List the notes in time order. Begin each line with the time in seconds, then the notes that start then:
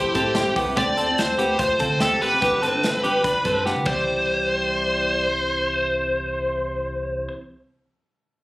Already playing: A1 G3 C4 E4 G4 A4 C5
0.14 A2 G3 C4 E4 A4, kick, closed hi-hat
0.35 A1 G3 C4 E4 G4 A4, snare, closed hi-hat
0.56 C2 B3 G4, kick, open hi-hat
0.66 G3 C4 E4 A4
0.76 D2 D3 A3 C4 F4 G4 A4 D5, kick, closed hi-hat
0.97 D2 C4 A4, closed hi-hat
1.08 C4 F4 A4
1.18 D2 C5, snare, closed hi-hat
1.38 D2 A3 B3 C4 F4 G4 A4, closed hi-hat
1.59 D2 F4 C5, kick, closed hi-hat
1.79 D3 A3 C4 F4 A4, kick, closed hi-hat
1.99 D2 A3 C4 F4 G4 A4, snare, closed hi-hat
2.21 F1 B3 G4 B4, open hi-hat
2.32 C4 F4 A4
2.41 G1 G3 B3 D4 F4 G4 B4, kick, closed hi-hat
2.62 G1 C4 A4, closed hi-hat
2.72 D4 F4 B4
2.83 G1, snare, closed hi-hat
3.03 G1 G3 B3 D4 F4 G4 B4, closed hi-hat
3.24 G1 D4 B4, kick, closed hi-hat
3.43 G2 G3 C4 D4 F4 A4 B4, kick, closed hi-hat
3.64 G1 G3 B3 D4 F4 G4 B4, snare
3.76 high tom
3.83 C2 C3 E3 G3 C5, kick, crash
3.88 C4 E4 C5